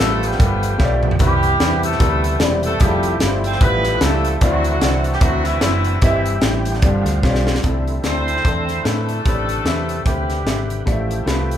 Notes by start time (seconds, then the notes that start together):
Already playing: G2 F3 A3 B3 D4 F4 G4 A4
0.00 A1 A3 F4 G4, snare
0.04 B4
0.23 G3 B3 D4 G4, closed hi-hat
0.32 snare
0.38 G1 A3 F4 G4 A#4, kick, closed hi-hat
0.45 B4
0.63 closed hi-hat
0.78 B1 A3 F4 G4 C#5, kick, snare
0.84 D5
1.03 mid tom
1.11 floor tom
1.19 C2 C3 E3 G3 B3 C4 E4 F4 G4 A#4, kick, closed hi-hat
1.25 G4 B4
1.43 closed hi-hat
1.60 E2 G3 C4 D#4 B4, snare, closed hi-hat
1.66 E4
1.83 A3 E4 A4, closed hi-hat
1.92 snare
1.99 D2 G3 C4 E4 A#4, kick, closed hi-hat
2.05 B4
2.24 closed hi-hat
2.40 E1 G3 C4 E4 D5, snare, closed hi-hat
2.63 A3 A4, closed hi-hat
2.80 F1 F3 G3 A3 C4 E4 F4 G4 G#4, kick, closed hi-hat
2.87 A4
3.03 closed hi-hat
3.20 G1 G3 E4 F4 B4, snare, closed hi-hat
3.27 C5
3.44 C4 C5, closed hi-hat
3.53 snare
3.60 A1 G3 B3 E4 F4 G4 B4, kick, closed hi-hat
3.84 snare, closed hi-hat
4.00 C#2 G3 A3 C4 E4 F4 G4 A4, snare, closed hi-hat
4.06 A4
4.24 closed hi-hat
4.41 D2 D3 E3 F#3 A3 C4 D4 E4 F#4 D5, kick, closed hi-hat
4.64 closed hi-hat
4.81 C2 C4 E4 F#4 D5, snare, closed hi-hat
5.04 A3 A4, closed hi-hat
5.13 G3 G4, snare
5.20 D2 F#3 A3 C4 E4 F#4 E5, kick, closed hi-hat
5.44 E3 A3 C4 E4, snare, closed hi-hat
5.61 F#1 C4 E4 F#4 C5, snare, closed hi-hat
5.84 closed hi-hat
6.02 G1 G2 D3 E3 G3 C4 E4 G4 D#5, kick, closed hi-hat
6.07 E3 E5
6.26 closed hi-hat
6.41 A1 C4 E4 G4 G5, snare, closed hi-hat
6.65 D3 F3 D4, closed hi-hat
6.74 snare
6.82 G1 G2 D3 G3 C4 F4 G4 D5, kick, closed hi-hat
7.05 D2, snare, closed hi-hat
7.23 B1 C4 F4 G4 C#5, kick, snare
7.30 D5
7.35 snare
7.47 snare
7.55 snare
7.63 C2 C3 D3 A3 C4 E4 A4 D5, kick, closed hi-hat
7.87 closed hi-hat
8.03 D2 C4 E4 A4 C5 D5, snare, closed hi-hat
8.28 closed hi-hat
8.37 snare
8.45 E2 C4 E4 A4 D5, kick, closed hi-hat
8.68 snare, closed hi-hat
8.84 A2 A3 C4 D4 D#4 E4 A4 B4, snare, closed hi-hat
8.90 E4
9.09 closed hi-hat
9.25 A1 A2 C3 D3 C4 G4 B4 C#5, kick, closed hi-hat
9.31 D5
9.49 closed hi-hat
9.65 E2 C4 G4 B4 E5, snare, closed hi-hat
9.89 closed hi-hat
10.04 D2 G3 B3 C4 G4 B4 E5, kick, closed hi-hat
10.29 snare, closed hi-hat
10.46 G#1 C4 G4 B4 E5, snare, closed hi-hat
10.70 closed hi-hat
10.86 A1 A2 F3 A3 E4 F4 G4 D5, kick, closed hi-hat
10.91 E5
11.11 closed hi-hat
11.26 C2 A3 F4 G4 B4, snare, closed hi-hat
11.51 closed hi-hat